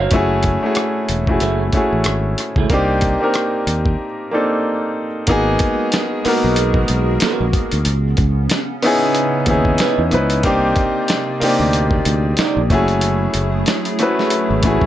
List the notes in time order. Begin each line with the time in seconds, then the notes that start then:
Already playing: F#3 C#4 D#4 F4 A4 A#4
0.00 F#4 C#5 F5
0.11 F#1 A3 C#4 E4 F#4, kick, closed hi-hat
0.16 G#4
0.43 kick, closed hi-hat
0.63 A3 C#4 E4 F#4 G#4
0.75 cross-stick, closed hi-hat
1.09 E1, closed hi-hat
1.27 A3 C#4 E4 F#4 G#4, kick
1.40 F#1 A3 E4 G#4, closed hi-hat
1.72 A3 C#4 E4 F#4, kick, closed hi-hat
1.77 G#4
1.93 A1
2.04 G#1, cross-stick, closed hi-hat
2.38 cross-stick, closed hi-hat
2.56 C#2 A3 E4 G#4, kick
2.70 C2 A#3 C4 D4 D#4, kick, closed hi-hat
2.74 G4
3.01 kick, closed hi-hat
3.20 A#3 C4 D4 D#4 A#4
3.34 cross-stick, closed hi-hat
3.67 D#2, closed hi-hat
3.86 kick
4.31 A#3 C4 D4 D#4 A4
5.27 G#1 G#3 A#3 B3 D#4 F#4 G#4 A#4, kick, closed hi-hat
5.31 G#4
5.59 kick, closed hi-hat
5.92 snare, closed hi-hat
6.24 A#3 B3 D#4 F#4 A#4, muted fingered electric bass stroke, open hi-hat
6.44 B1
6.56 closed hi-hat
6.74 kick
6.88 B1, closed hi-hat
7.20 B3, muted fingered electric bass stroke, snare, closed hi-hat
7.24 F#4 A#4
7.40 A#1
7.53 kick, closed hi-hat
7.72 D2, closed hi-hat
7.85 C#2 C#3 B3 C#4, closed hi-hat
8.17 C#2, kick, closed hi-hat
8.50 snare, closed hi-hat
8.82 B3 C#4 D#4 E4 G#4, open hi-hat
9.15 closed hi-hat
9.46 D#2 B3 C#4 D#4 E4, kick, closed hi-hat
9.50 G#4
9.65 kick
9.78 E4 B4, snare, closed hi-hat
9.82 D#5
9.98 E2
10.11 C#2 B3 C#4 D#4 E4 B4, closed hi-hat
10.30 closed hi-hat
10.43 C2 C3 A#3 C4 D4 D#4 G4 D5, kick, closed hi-hat
10.76 kick, closed hi-hat
11.08 snare, closed hi-hat
11.40 A#3 C4 D4 D#4 G4, muted fingered electric bass stroke, open hi-hat
11.60 D2
11.73 closed hi-hat
11.91 kick
12.05 D2, closed hi-hat
12.37 D#4 A#4, muted fingered electric bass stroke, snare, closed hi-hat
12.41 D5
12.57 A#1
12.70 F#1 F#3 A3 C#4 E4 F#4 G#4, kick, closed hi-hat
12.88 closed hi-hat
13.01 closed hi-hat
13.34 F#1, closed hi-hat
13.66 snare, closed hi-hat
13.85 closed hi-hat
13.99 A3 C#4 E4 F#4 B4, closed hi-hat
14.19 snare
14.30 closed hi-hat
14.50 G#1
14.63 A1 A3 C#4 E4 F#4 G#4, kick, closed hi-hat
14.81 B1, kick